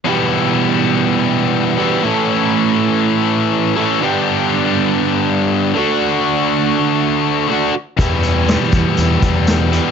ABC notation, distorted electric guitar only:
X:1
M:4/4
L:1/8
Q:1/4=121
K:Edor
V:1 name="Distorted electric guitar" clef=bass
[E,,B,,E,G,B,E]6- [E,,B,,E,G,B,E] [E,,B,,E,G,B,E] | [A,,E,A,CE]6- [A,,E,A,CE] [A,,E,A,CE] | [G,,D,G,B,DG]6- [G,,D,G,B,DG] [D,A,DF]- | [D,A,DF]6 [D,A,DF] z |
[E,,B,,E,G,B,E]6- [E,,B,,E,G,B,E] [E,,B,,E,G,B,E] |]